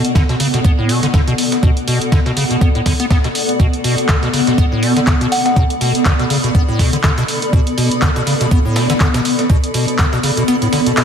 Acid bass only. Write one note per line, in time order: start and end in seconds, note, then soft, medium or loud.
0.15 0.23 D3 loud
0.29 0.35 B2 medium
0.40 0.48 C#3 medium
0.54 0.60 B2 medium
0.65 0.72 B3 medium
0.78 0.91 A2 medium
0.89 1.01 B2 medium
1.03 1.07 D3 loud
1.14 1.21 D3 medium
1.28 1.33 B2 loud
1.63 1.71 B2 medium
1.88 1.99 B2 medium
2.12 2.20 D3 loud
2.26 2.32 B2 medium
2.37 2.44 C#3 medium
2.51 2.56 B2 medium
2.61 2.69 B3 medium
2.75 2.81 A2 medium
2.86 2.93 D3 medium
3.00 3.06 B3 medium
3.11 3.18 B3 loud
3.24 3.28 B2 medium
3.60 3.67 B2 medium
3.84 3.96 B2 medium
4.09 4.16 D3 loud
4.23 4.29 B2 medium
4.33 4.41 C#3 medium
4.47 4.53 B2 medium
4.58 4.66 B3 medium
4.72 4.84 A2 medium
4.83 4.94 B2 medium
4.97 5.00 D3 loud
5.07 5.15 D3 loud
5.21 5.27 B2 loud
5.57 5.64 B2 medium
5.81 5.92 B2 medium
6.06 6.13 D3 loud
6.19 6.25 B2 medium
6.30 6.38 C#3 medium
6.44 6.50 B2 medium
6.55 6.62 B3 medium
6.69 6.81 A2 medium
6.79 6.91 B2 medium
6.93 6.97 D3 loud
7.04 7.11 D3 loud
7.18 7.24 B2 loud
7.53 7.61 B2 medium
7.78 7.89 B2 medium
8.02 8.10 D3 loud
8.16 8.22 B2 medium
8.27 8.34 C#3 medium
8.41 8.47 B2 medium
8.51 8.59 B3 medium
8.65 8.77 A2 medium
8.76 8.87 B2 medium
8.90 8.93 D3 medium
9.01 9.08 D3 loud
9.14 9.20 B2 loud
9.50 9.57 B2 medium
9.74 9.86 B2 medium
9.99 10.06 D3 loud
10.13 10.19 B2 medium
10.23 10.31 C#3 medium
10.37 10.43 B2 medium
10.48 10.56 B3 medium
10.62 10.68 A2 medium
10.73 10.80 D3 medium
10.86 10.92 B2 medium
10.97 11.04 B2 medium